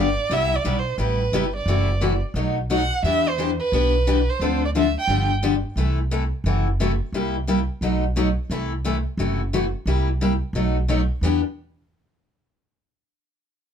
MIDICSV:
0, 0, Header, 1, 4, 480
1, 0, Start_track
1, 0, Key_signature, 1, "minor"
1, 0, Tempo, 341491
1, 423, Time_signature, 4, 2, 24, 8
1, 19303, End_track
2, 0, Start_track
2, 0, Title_t, "Violin"
2, 0, Program_c, 0, 40
2, 0, Note_on_c, 0, 74, 88
2, 469, Note_on_c, 0, 76, 98
2, 490, Note_off_c, 0, 74, 0
2, 788, Note_on_c, 0, 74, 84
2, 809, Note_off_c, 0, 76, 0
2, 1113, Note_on_c, 0, 72, 77
2, 1134, Note_off_c, 0, 74, 0
2, 1409, Note_off_c, 0, 72, 0
2, 1424, Note_on_c, 0, 71, 82
2, 2128, Note_off_c, 0, 71, 0
2, 2196, Note_on_c, 0, 74, 72
2, 3083, Note_off_c, 0, 74, 0
2, 3820, Note_on_c, 0, 78, 93
2, 4251, Note_off_c, 0, 78, 0
2, 4289, Note_on_c, 0, 76, 92
2, 4616, Note_on_c, 0, 72, 78
2, 4637, Note_off_c, 0, 76, 0
2, 4921, Note_off_c, 0, 72, 0
2, 5060, Note_on_c, 0, 71, 99
2, 6039, Note_on_c, 0, 72, 81
2, 6060, Note_off_c, 0, 71, 0
2, 6525, Note_off_c, 0, 72, 0
2, 6540, Note_on_c, 0, 74, 81
2, 6604, Note_off_c, 0, 74, 0
2, 6707, Note_on_c, 0, 76, 94
2, 6964, Note_off_c, 0, 76, 0
2, 7007, Note_on_c, 0, 79, 97
2, 7433, Note_off_c, 0, 79, 0
2, 19303, End_track
3, 0, Start_track
3, 0, Title_t, "Steel-string acoustic guitar"
3, 0, Program_c, 1, 25
3, 432, Note_on_c, 1, 55, 79
3, 433, Note_on_c, 1, 48, 78
3, 439, Note_on_c, 1, 59, 79
3, 443, Note_on_c, 1, 64, 82
3, 452, Note_on_c, 1, 67, 80
3, 723, Note_off_c, 1, 55, 0
3, 724, Note_off_c, 1, 48, 0
3, 727, Note_off_c, 1, 59, 0
3, 729, Note_off_c, 1, 64, 0
3, 733, Note_off_c, 1, 67, 0
3, 910, Note_on_c, 1, 48, 69
3, 911, Note_on_c, 1, 55, 88
3, 915, Note_on_c, 1, 59, 91
3, 920, Note_on_c, 1, 64, 86
3, 925, Note_on_c, 1, 67, 88
3, 1063, Note_off_c, 1, 48, 0
3, 1064, Note_off_c, 1, 55, 0
3, 1066, Note_off_c, 1, 59, 0
3, 1069, Note_off_c, 1, 64, 0
3, 1071, Note_off_c, 1, 67, 0
3, 1379, Note_on_c, 1, 48, 61
3, 1387, Note_on_c, 1, 59, 72
3, 1389, Note_on_c, 1, 55, 71
3, 1399, Note_on_c, 1, 64, 70
3, 1400, Note_on_c, 1, 67, 83
3, 1678, Note_off_c, 1, 48, 0
3, 1681, Note_off_c, 1, 59, 0
3, 1682, Note_off_c, 1, 55, 0
3, 1687, Note_off_c, 1, 64, 0
3, 1688, Note_off_c, 1, 67, 0
3, 1871, Note_on_c, 1, 48, 93
3, 1880, Note_on_c, 1, 55, 88
3, 1885, Note_on_c, 1, 59, 90
3, 1886, Note_on_c, 1, 64, 85
3, 1888, Note_on_c, 1, 67, 94
3, 2024, Note_off_c, 1, 48, 0
3, 2029, Note_off_c, 1, 55, 0
3, 2031, Note_off_c, 1, 59, 0
3, 2032, Note_off_c, 1, 64, 0
3, 2033, Note_off_c, 1, 67, 0
3, 2358, Note_on_c, 1, 48, 68
3, 2362, Note_on_c, 1, 52, 72
3, 2366, Note_on_c, 1, 57, 78
3, 2371, Note_on_c, 1, 66, 70
3, 2377, Note_on_c, 1, 64, 84
3, 2647, Note_off_c, 1, 48, 0
3, 2649, Note_off_c, 1, 52, 0
3, 2651, Note_off_c, 1, 57, 0
3, 2653, Note_off_c, 1, 66, 0
3, 2657, Note_off_c, 1, 64, 0
3, 2824, Note_on_c, 1, 48, 78
3, 2831, Note_on_c, 1, 52, 83
3, 2837, Note_on_c, 1, 57, 79
3, 2838, Note_on_c, 1, 64, 90
3, 2841, Note_on_c, 1, 66, 86
3, 2981, Note_off_c, 1, 48, 0
3, 2985, Note_off_c, 1, 52, 0
3, 2988, Note_off_c, 1, 57, 0
3, 2988, Note_off_c, 1, 64, 0
3, 2990, Note_off_c, 1, 66, 0
3, 3309, Note_on_c, 1, 47, 66
3, 3317, Note_on_c, 1, 54, 72
3, 3317, Note_on_c, 1, 57, 63
3, 3324, Note_on_c, 1, 63, 71
3, 3327, Note_on_c, 1, 66, 73
3, 3603, Note_off_c, 1, 47, 0
3, 3607, Note_off_c, 1, 54, 0
3, 3607, Note_off_c, 1, 57, 0
3, 3610, Note_off_c, 1, 63, 0
3, 3612, Note_off_c, 1, 66, 0
3, 3794, Note_on_c, 1, 47, 78
3, 3800, Note_on_c, 1, 54, 81
3, 3804, Note_on_c, 1, 57, 91
3, 3804, Note_on_c, 1, 63, 85
3, 3811, Note_on_c, 1, 66, 90
3, 3946, Note_off_c, 1, 47, 0
3, 3950, Note_off_c, 1, 54, 0
3, 3951, Note_off_c, 1, 57, 0
3, 3951, Note_off_c, 1, 63, 0
3, 3955, Note_off_c, 1, 66, 0
3, 4278, Note_on_c, 1, 52, 74
3, 4283, Note_on_c, 1, 59, 81
3, 4288, Note_on_c, 1, 62, 80
3, 4296, Note_on_c, 1, 67, 78
3, 4567, Note_off_c, 1, 52, 0
3, 4570, Note_off_c, 1, 59, 0
3, 4573, Note_off_c, 1, 62, 0
3, 4576, Note_off_c, 1, 67, 0
3, 4753, Note_on_c, 1, 52, 74
3, 4760, Note_on_c, 1, 59, 73
3, 4764, Note_on_c, 1, 62, 88
3, 4775, Note_on_c, 1, 67, 98
3, 4906, Note_off_c, 1, 52, 0
3, 4910, Note_off_c, 1, 59, 0
3, 4911, Note_off_c, 1, 62, 0
3, 4917, Note_off_c, 1, 67, 0
3, 5246, Note_on_c, 1, 52, 73
3, 5247, Note_on_c, 1, 59, 82
3, 5258, Note_on_c, 1, 62, 69
3, 5258, Note_on_c, 1, 67, 67
3, 5532, Note_off_c, 1, 52, 0
3, 5532, Note_off_c, 1, 59, 0
3, 5538, Note_off_c, 1, 62, 0
3, 5538, Note_off_c, 1, 67, 0
3, 5721, Note_on_c, 1, 59, 78
3, 5723, Note_on_c, 1, 52, 91
3, 5727, Note_on_c, 1, 62, 106
3, 5737, Note_on_c, 1, 67, 86
3, 5870, Note_off_c, 1, 59, 0
3, 5871, Note_off_c, 1, 52, 0
3, 5873, Note_off_c, 1, 62, 0
3, 5878, Note_off_c, 1, 67, 0
3, 6201, Note_on_c, 1, 50, 76
3, 6204, Note_on_c, 1, 53, 67
3, 6208, Note_on_c, 1, 60, 80
3, 6212, Note_on_c, 1, 62, 76
3, 6218, Note_on_c, 1, 69, 70
3, 6489, Note_off_c, 1, 50, 0
3, 6491, Note_off_c, 1, 53, 0
3, 6493, Note_off_c, 1, 60, 0
3, 6495, Note_off_c, 1, 62, 0
3, 6498, Note_off_c, 1, 69, 0
3, 6675, Note_on_c, 1, 50, 78
3, 6680, Note_on_c, 1, 53, 82
3, 6685, Note_on_c, 1, 60, 84
3, 6689, Note_on_c, 1, 62, 81
3, 6693, Note_on_c, 1, 69, 85
3, 6827, Note_off_c, 1, 50, 0
3, 6830, Note_off_c, 1, 53, 0
3, 6832, Note_off_c, 1, 60, 0
3, 6834, Note_off_c, 1, 62, 0
3, 6836, Note_off_c, 1, 69, 0
3, 7152, Note_on_c, 1, 53, 74
3, 7156, Note_on_c, 1, 50, 66
3, 7163, Note_on_c, 1, 62, 71
3, 7164, Note_on_c, 1, 59, 65
3, 7169, Note_on_c, 1, 67, 80
3, 7444, Note_off_c, 1, 53, 0
3, 7447, Note_off_c, 1, 50, 0
3, 7450, Note_off_c, 1, 62, 0
3, 7451, Note_off_c, 1, 59, 0
3, 7453, Note_off_c, 1, 67, 0
3, 7626, Note_on_c, 1, 50, 86
3, 7633, Note_on_c, 1, 59, 82
3, 7634, Note_on_c, 1, 53, 77
3, 7639, Note_on_c, 1, 62, 98
3, 7643, Note_on_c, 1, 67, 95
3, 7783, Note_off_c, 1, 50, 0
3, 7786, Note_off_c, 1, 59, 0
3, 7787, Note_off_c, 1, 53, 0
3, 7789, Note_off_c, 1, 62, 0
3, 7791, Note_off_c, 1, 67, 0
3, 8108, Note_on_c, 1, 48, 67
3, 8116, Note_on_c, 1, 52, 72
3, 8121, Note_on_c, 1, 57, 68
3, 8126, Note_on_c, 1, 69, 76
3, 8127, Note_on_c, 1, 64, 81
3, 8402, Note_off_c, 1, 48, 0
3, 8407, Note_off_c, 1, 52, 0
3, 8409, Note_off_c, 1, 57, 0
3, 8412, Note_off_c, 1, 64, 0
3, 8412, Note_off_c, 1, 69, 0
3, 8592, Note_on_c, 1, 52, 78
3, 8593, Note_on_c, 1, 48, 85
3, 8595, Note_on_c, 1, 57, 83
3, 8602, Note_on_c, 1, 64, 78
3, 8607, Note_on_c, 1, 69, 85
3, 8746, Note_off_c, 1, 48, 0
3, 8746, Note_off_c, 1, 52, 0
3, 8747, Note_off_c, 1, 57, 0
3, 8751, Note_off_c, 1, 64, 0
3, 8753, Note_off_c, 1, 69, 0
3, 9077, Note_on_c, 1, 48, 66
3, 9081, Note_on_c, 1, 52, 71
3, 9084, Note_on_c, 1, 57, 68
3, 9091, Note_on_c, 1, 64, 77
3, 9092, Note_on_c, 1, 66, 74
3, 9367, Note_off_c, 1, 48, 0
3, 9369, Note_off_c, 1, 52, 0
3, 9370, Note_off_c, 1, 57, 0
3, 9374, Note_off_c, 1, 64, 0
3, 9375, Note_off_c, 1, 66, 0
3, 9557, Note_on_c, 1, 48, 91
3, 9563, Note_on_c, 1, 52, 85
3, 9570, Note_on_c, 1, 64, 98
3, 9575, Note_on_c, 1, 57, 89
3, 9581, Note_on_c, 1, 66, 87
3, 9708, Note_off_c, 1, 48, 0
3, 9711, Note_off_c, 1, 52, 0
3, 9714, Note_off_c, 1, 64, 0
3, 9717, Note_off_c, 1, 57, 0
3, 9720, Note_off_c, 1, 66, 0
3, 10039, Note_on_c, 1, 48, 76
3, 10042, Note_on_c, 1, 55, 66
3, 10047, Note_on_c, 1, 58, 74
3, 10051, Note_on_c, 1, 64, 79
3, 10060, Note_on_c, 1, 67, 78
3, 10328, Note_off_c, 1, 48, 0
3, 10329, Note_off_c, 1, 55, 0
3, 10332, Note_off_c, 1, 58, 0
3, 10334, Note_off_c, 1, 64, 0
3, 10338, Note_off_c, 1, 67, 0
3, 10505, Note_on_c, 1, 48, 72
3, 10516, Note_on_c, 1, 55, 84
3, 10516, Note_on_c, 1, 58, 90
3, 10522, Note_on_c, 1, 67, 92
3, 10525, Note_on_c, 1, 64, 92
3, 10661, Note_off_c, 1, 48, 0
3, 10667, Note_off_c, 1, 55, 0
3, 10667, Note_off_c, 1, 58, 0
3, 10670, Note_off_c, 1, 67, 0
3, 10672, Note_off_c, 1, 64, 0
3, 10993, Note_on_c, 1, 47, 69
3, 11000, Note_on_c, 1, 54, 69
3, 11000, Note_on_c, 1, 57, 69
3, 11009, Note_on_c, 1, 63, 80
3, 11009, Note_on_c, 1, 66, 70
3, 11284, Note_off_c, 1, 47, 0
3, 11288, Note_off_c, 1, 54, 0
3, 11288, Note_off_c, 1, 57, 0
3, 11292, Note_off_c, 1, 63, 0
3, 11292, Note_off_c, 1, 66, 0
3, 11468, Note_on_c, 1, 47, 81
3, 11477, Note_on_c, 1, 57, 89
3, 11479, Note_on_c, 1, 54, 93
3, 11484, Note_on_c, 1, 63, 82
3, 11485, Note_on_c, 1, 66, 94
3, 11623, Note_off_c, 1, 47, 0
3, 11627, Note_off_c, 1, 57, 0
3, 11628, Note_off_c, 1, 54, 0
3, 11631, Note_off_c, 1, 63, 0
3, 11631, Note_off_c, 1, 66, 0
3, 11957, Note_on_c, 1, 48, 66
3, 11962, Note_on_c, 1, 52, 79
3, 11964, Note_on_c, 1, 57, 80
3, 11972, Note_on_c, 1, 64, 87
3, 11976, Note_on_c, 1, 69, 73
3, 12246, Note_off_c, 1, 48, 0
3, 12248, Note_off_c, 1, 52, 0
3, 12250, Note_off_c, 1, 57, 0
3, 12253, Note_off_c, 1, 64, 0
3, 12256, Note_off_c, 1, 69, 0
3, 12432, Note_on_c, 1, 48, 76
3, 12442, Note_on_c, 1, 52, 91
3, 12446, Note_on_c, 1, 57, 91
3, 12450, Note_on_c, 1, 64, 90
3, 12452, Note_on_c, 1, 69, 81
3, 12584, Note_off_c, 1, 48, 0
3, 12589, Note_off_c, 1, 52, 0
3, 12591, Note_off_c, 1, 57, 0
3, 12593, Note_off_c, 1, 64, 0
3, 12594, Note_off_c, 1, 69, 0
3, 12916, Note_on_c, 1, 48, 68
3, 12924, Note_on_c, 1, 57, 70
3, 12927, Note_on_c, 1, 52, 70
3, 12931, Note_on_c, 1, 66, 71
3, 12933, Note_on_c, 1, 64, 68
3, 13205, Note_off_c, 1, 48, 0
3, 13209, Note_off_c, 1, 57, 0
3, 13211, Note_off_c, 1, 52, 0
3, 13212, Note_off_c, 1, 66, 0
3, 13213, Note_off_c, 1, 64, 0
3, 13398, Note_on_c, 1, 48, 77
3, 13403, Note_on_c, 1, 52, 77
3, 13406, Note_on_c, 1, 57, 84
3, 13408, Note_on_c, 1, 64, 81
3, 13412, Note_on_c, 1, 66, 100
3, 13547, Note_off_c, 1, 48, 0
3, 13549, Note_off_c, 1, 52, 0
3, 13551, Note_off_c, 1, 57, 0
3, 13552, Note_off_c, 1, 64, 0
3, 13554, Note_off_c, 1, 66, 0
3, 13873, Note_on_c, 1, 48, 75
3, 13876, Note_on_c, 1, 55, 73
3, 13878, Note_on_c, 1, 58, 80
3, 13887, Note_on_c, 1, 64, 75
3, 13888, Note_on_c, 1, 67, 76
3, 14163, Note_off_c, 1, 48, 0
3, 14164, Note_off_c, 1, 55, 0
3, 14166, Note_off_c, 1, 58, 0
3, 14170, Note_off_c, 1, 64, 0
3, 14170, Note_off_c, 1, 67, 0
3, 14352, Note_on_c, 1, 48, 80
3, 14354, Note_on_c, 1, 55, 82
3, 14363, Note_on_c, 1, 58, 72
3, 14366, Note_on_c, 1, 64, 87
3, 14373, Note_on_c, 1, 67, 96
3, 14503, Note_off_c, 1, 48, 0
3, 14504, Note_off_c, 1, 55, 0
3, 14509, Note_off_c, 1, 58, 0
3, 14510, Note_off_c, 1, 64, 0
3, 14514, Note_off_c, 1, 67, 0
3, 14829, Note_on_c, 1, 47, 71
3, 14832, Note_on_c, 1, 54, 58
3, 14837, Note_on_c, 1, 57, 61
3, 14839, Note_on_c, 1, 63, 66
3, 14840, Note_on_c, 1, 66, 69
3, 15120, Note_off_c, 1, 47, 0
3, 15122, Note_off_c, 1, 54, 0
3, 15124, Note_off_c, 1, 57, 0
3, 15126, Note_off_c, 1, 63, 0
3, 15126, Note_off_c, 1, 66, 0
3, 15298, Note_on_c, 1, 47, 85
3, 15305, Note_on_c, 1, 54, 75
3, 15311, Note_on_c, 1, 57, 80
3, 15313, Note_on_c, 1, 63, 82
3, 15319, Note_on_c, 1, 66, 98
3, 15456, Note_off_c, 1, 47, 0
3, 15459, Note_off_c, 1, 54, 0
3, 15462, Note_off_c, 1, 57, 0
3, 15463, Note_off_c, 1, 63, 0
3, 15466, Note_off_c, 1, 66, 0
3, 15782, Note_on_c, 1, 52, 87
3, 15796, Note_on_c, 1, 59, 92
3, 15806, Note_on_c, 1, 62, 89
3, 15812, Note_on_c, 1, 67, 90
3, 16018, Note_off_c, 1, 52, 0
3, 16025, Note_off_c, 1, 59, 0
3, 16030, Note_off_c, 1, 62, 0
3, 16033, Note_off_c, 1, 67, 0
3, 19303, End_track
4, 0, Start_track
4, 0, Title_t, "Upright bass"
4, 0, Program_c, 2, 32
4, 0, Note_on_c, 2, 31, 82
4, 224, Note_off_c, 2, 31, 0
4, 416, Note_on_c, 2, 36, 83
4, 803, Note_off_c, 2, 36, 0
4, 907, Note_on_c, 2, 35, 78
4, 1314, Note_off_c, 2, 35, 0
4, 1374, Note_on_c, 2, 33, 91
4, 1787, Note_off_c, 2, 33, 0
4, 1855, Note_on_c, 2, 31, 67
4, 2268, Note_off_c, 2, 31, 0
4, 2328, Note_on_c, 2, 30, 90
4, 3103, Note_off_c, 2, 30, 0
4, 3288, Note_on_c, 2, 35, 91
4, 4063, Note_off_c, 2, 35, 0
4, 4256, Note_on_c, 2, 40, 88
4, 5028, Note_off_c, 2, 40, 0
4, 5229, Note_on_c, 2, 35, 86
4, 5996, Note_off_c, 2, 35, 0
4, 6177, Note_on_c, 2, 38, 83
4, 6949, Note_off_c, 2, 38, 0
4, 7133, Note_on_c, 2, 31, 94
4, 7906, Note_off_c, 2, 31, 0
4, 8090, Note_on_c, 2, 36, 80
4, 8865, Note_off_c, 2, 36, 0
4, 9049, Note_on_c, 2, 30, 88
4, 9824, Note_off_c, 2, 30, 0
4, 10013, Note_on_c, 2, 36, 78
4, 10786, Note_off_c, 2, 36, 0
4, 10977, Note_on_c, 2, 35, 80
4, 11748, Note_off_c, 2, 35, 0
4, 11941, Note_on_c, 2, 36, 76
4, 12710, Note_off_c, 2, 36, 0
4, 12895, Note_on_c, 2, 30, 93
4, 13666, Note_off_c, 2, 30, 0
4, 13853, Note_on_c, 2, 36, 82
4, 14624, Note_off_c, 2, 36, 0
4, 14802, Note_on_c, 2, 35, 87
4, 15577, Note_off_c, 2, 35, 0
4, 15760, Note_on_c, 2, 40, 77
4, 16045, Note_off_c, 2, 40, 0
4, 19303, End_track
0, 0, End_of_file